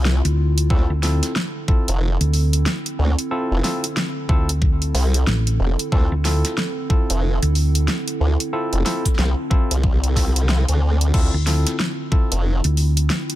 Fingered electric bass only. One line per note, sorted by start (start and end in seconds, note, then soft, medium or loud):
0.25 0.68 D2 loud
0.90 1.19 D2 loud
2.21 2.64 D2 loud
4.29 4.92 D2 loud
5.27 5.57 A1 loud
6.12 6.41 D2 loud
7.42 7.86 D2 loud
11.34 11.63 D2 loud
12.65 13.08 D2 loud